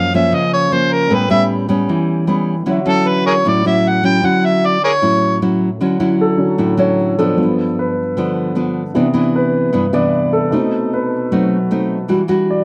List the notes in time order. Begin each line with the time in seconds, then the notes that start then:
Already playing: F#2 F3 A#3 C#4 A#4 F5 F#5
0.14 F3 A#3 C#4 E5
0.32 C#3 D#5
0.54 C#5
0.72 F3 A#3 C#4 C5
0.93 A#4
1.07 A2 G3 B3 C#4 A4
1.12 B4 G5
1.30 G3 B3 C#4 E5
1.69 G3 B3 C#4
1.89 E3
2.27 G3 B3 C#4 B5
2.66 D3 F#3 C#4 E4 F#4 C#5
2.71 E5
2.86 F#3 C#4 E4 A4
3.09 B4
3.26 G#4 A#4 C#5
3.45 A2 F#3 C#4 E4 D5
3.65 F#3 C#4 E4 E5
3.88 F#5
4.03 F#3 C#4 E4 G5
4.23 D3 F#3 C#4 E4 F#5
4.45 E5
4.66 D5
4.84 G#4 A#4 C#5
5.02 A2 F#3 C#4 E4
5.42 F#3 C#4 E4
5.81 D3 F#3 C#4 E4
6.00 F#3 C#4 E4
6.21 A4
6.37 D3 F#3 C#4
6.58 A2 F#3 C#4 E4
6.77 F#3 C#4 E4 C#5
7.19 F3 B3 D4 A4
7.36 G2 F3 B3
7.79 B4
8.17 D3 F3 B3 D4
8.55 F3 B3 D4
8.94 C3 E3 B3 D4
9.14 E3 B3 D4
9.36 B4
9.73 G2 E3 B3 D4
9.93 C3 E3 B3 D4 D5
10.33 A4
10.51 B2 A3 C4 D#4
10.94 B4
11.32 F#3 A3 C4 D#4
11.71 A3 C4 D#4
12.08 E3 G3 D4 F#4
12.28 G3 D4 F#4
12.51 D5